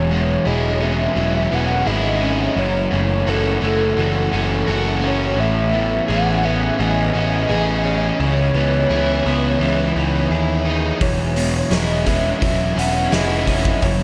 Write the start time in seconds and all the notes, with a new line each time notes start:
Already playing: E1 E2 F#3 C#5
0.11 B2 G#3
0.45 E1 F#3 E4 G#4 D#5
0.80 G#3 B3 C#4 E5
1.16 E1 F#3 C#4 E4
1.51 E1 B3 C#4 F#5
1.86 G#1 E4 G#4 D#5
2.22 C#4
2.56 F#1 F#2 E3 C#5
2.91 F#1 C#3 A3
3.27 F#1 E3 F#4 A4
3.61 F#1 A3 C#4
3.97 F#1 E3 C#4 F#4
4.33 F#1 A3 C#4
4.68 F#1 F#4 A4
5.04 C#4 C#5
5.38 A1 A2 E3 E5
5.73 E3 B3
6.08 A1 E3 G#4 F#5
6.43 B3 C#4 E5
6.79 A1 E3 C#4 G#4 D#5
7.14 A1 B3 C#4
7.49 A1 G#4
7.85 C#4
8.20 C#2 C#3 E3 C#5
8.54 C#2 E3 B3
8.89 C#2 E3 E4 G#4
9.26 C#2 B3
9.59 C#2 E3 E4
9.96 C#2 B3 D#4
10.30 D#2 E4 G#4
10.66 D#4
11.00 E1 E2 F#3 C#5, kick, open hi-hat
11.36 B2 G#3, open hi-hat
11.71 E1 F#3 E4 G#4 D#5, snare, open hi-hat
12.05 G#3 B3 C#4 E5, kick, open hi-hat
12.41 E1 F#3 C#4 E4, kick, open hi-hat
12.76 E1 B3 C#4 F#5, open hi-hat
13.12 F1 E4 G#4 D#5, snare, open hi-hat
13.47 C#4, kick, open hi-hat
13.65 kick
13.82 F#1 F#2 E3 C#5, kick, open hi-hat